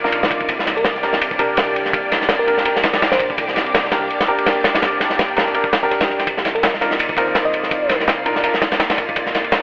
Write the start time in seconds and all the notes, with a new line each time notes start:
0.04 D4 D#4 F4 A#4, snare
0.12 C2, ride
0.23 snare
0.31 kick, ride
0.41 kick
0.48 C2, kick, ride
0.59 snare
0.66 snare, ride
0.77 A#4, ride
0.84 snare, ride
0.95 snare
1.03 D4 G4 A#4, snare, ride
1.13 snare
1.21 C2, ride
1.31 kick
1.39 D4 G4 A#4, kick, ride
1.57 C2, snare, ride
1.76 ride
1.85 snare
1.93 C2, kick, ride
2.12 snare, ride
2.21 snare
2.29 snare, ride
2.39 A#4
2.47 D4 G4 A#4, ride
2.58 snare
2.65 G1 D4 G4 A#4, ride
2.76 snare
2.83 A#1, snare, ride
2.93 snare, ride
3.02 snare, ride
3.12 C5, snare, ride
3.20 kick, ride
3.30 kick
3.38 C2, kick, ride
3.48 snare
3.56 snare, ride
3.66 ride
3.74 snare, ride
3.85 snare
3.92 D4 G4 A#4, snare, ride
4.10 ride
4.20 snare, ride
4.28 D4 G4 A#4
4.38 ride
4.46 snare, ride
4.64 snare, ride
4.75 snare, ride
4.82 C2, snare, ride
5.00 snare, ride
5.10 snare
5.19 snare, ride
5.36 D4 G4 A#4, snare, ride
5.46 snare
5.54 D4 G4 A#4, ride
5.64 kick
5.73 snare, ride
5.83 A#1 D4 G4 A#4, snare
5.91 C2, snare, ride
6.00 snare, ride
6.10 snare
6.19 snare, ride
6.27 C2, kick, closed hi-hat, ride
6.37 snare
6.45 snare, closed hi-hat, ride
6.55 A#4, ride
6.63 snare, closed hi-hat, ride
6.74 snare
6.81 D4 D#4 F4 A#4, snare, closed hi-hat, ride
6.91 snare
6.99 D#2, closed hi-hat, ride
7.09 kick
7.17 C4 D#4 F4 A#4, kick, snare, closed hi-hat, ride
7.27 snare
7.35 C2, snare, open hi-hat, ride
7.45 D#5, snare
7.53 closed hi-hat, ride
7.63 snare
7.71 C2, kick, closed hi-hat, ride
7.89 snare, closed hi-hat, ride
8.00 snare
8.08 snare, closed hi-hat, ride
8.26 D4 D#4 F4 A#4, closed hi-hat, ride
8.36 snare
8.44 G1 D4 D#4 F4 A#4, closed hi-hat, ride
8.54 snare, closed hi-hat
8.62 A#1, snare, closed hi-hat, ride
8.72 snare, ride
8.80 snare, closed hi-hat, ride
8.90 snare, ride
8.98 kick, snare, closed hi-hat, ride
9.09 kick
9.16 C2, kick, closed hi-hat, ride
9.26 snare
9.34 snare, closed hi-hat, ride
9.44 ride
9.52 snare, closed hi-hat, ride